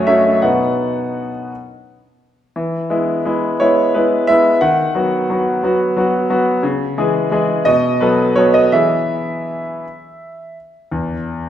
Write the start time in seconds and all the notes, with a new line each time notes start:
Already playing: F#2 F#3 A3 C#4 C#5 D#5
0.07 F#3 A3 C#4 E5
0.42 B2 B3 D#4 F#5
2.56 E3
2.90 G#3 B3 E4
3.25 G#3 B3 E4
3.60 G#3 B3 E4 C#5
3.94 G#3 B3 E4 B4
4.27 G#3 B3 E4 E5
4.61 D#3 F#5
4.95 F#3 B3 F#4
5.30 F#3 B3 F#4
5.63 F#3 B3 F#4
5.97 F#3 B3 F#4
6.30 F#3 B3 F#4
6.63 C#3
6.98 E3 G#3 G#4
7.31 E3 G#3 G#4
7.65 B2 D#5
8.01 F#3 B3 A4 B4
8.36 F#3 B3 A4 C#5
8.54 D#5
8.72 E3 B3 G#4 E5
10.91 E2